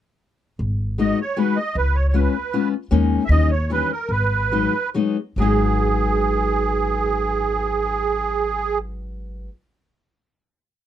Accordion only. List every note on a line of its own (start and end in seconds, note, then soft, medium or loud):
1.00 1.19 D#5 medium
1.21 1.39 C#5 medium
1.38 1.58 B4 medium
1.57 1.76 D#5 medium
1.78 1.97 B4 medium
1.96 2.07 C#5 medium
2.08 2.15 C#5 medium
2.15 2.69 B4 medium
3.25 3.30 E5 medium
3.31 3.51 D#5 medium
3.51 3.70 C#5 medium
3.72 3.91 B4 medium
3.92 4.11 A#4 medium
4.11 4.90 B4 medium
5.40 8.78 G#4 medium